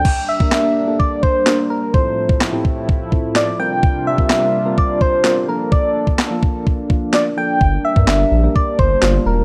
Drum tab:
CC |x---------------|----------------|----------------|----------------|
CP |----x-------x---|----x-------x---|----x-------x---|----x-------x---|
SD |----o-------o---|----o-------o---|----o-------o---|----o-------o---|
BD |o--o----o-o-----|o--o--o-o-o-----|o--o----o-o-----|o--o--o-o-o-----|

CC |----------------|
CP |----x-------x---|
SD |----o-------o---|
BD |o--o----o-o-----|